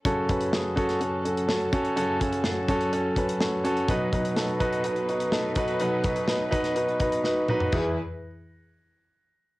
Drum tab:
CC |----------------|----------------|----------------|----------------|
HH |x-xx--xxx-xx-xxx|x-xx--xxx-xx--xx|x-xx-xxxxxxx--xx|x-xx--xxxxxx----|
SD |----o--o----o---|----o-------o---|----o-------o---|----o--o----o---|
T2 |----------------|----------------|----------------|--------------o-|
FT |----------------|----------------|----------------|---------------o|
BD |o-o---o-------o-|--o---o---o-----|o-o---o-------o-|--o---o---o-----|

CC |x---------------|
HH |----------------|
SD |----------------|
T2 |----------------|
FT |----------------|
BD |o---------------|